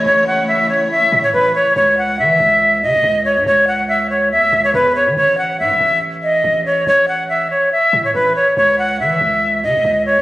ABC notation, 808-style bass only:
X:1
M:4/4
L:1/16
Q:1/4=141
K:C#m
V:1 name="808-style bass" clef=bass
A,,,6 z4 A,,2 A,,,2 z2 | C,,4 E,2 C,,4 C, C,, C,,3 G,, | C,,8 E,, C,, C,,2 E,,3 E, | A,,,4 A,, A,,, A,,,6 A,,,4 |
A,,,6 z4 A,,2 A,,,2 z2 | C,,4 E,2 C,,4 C, C,, C,,3 G,, |]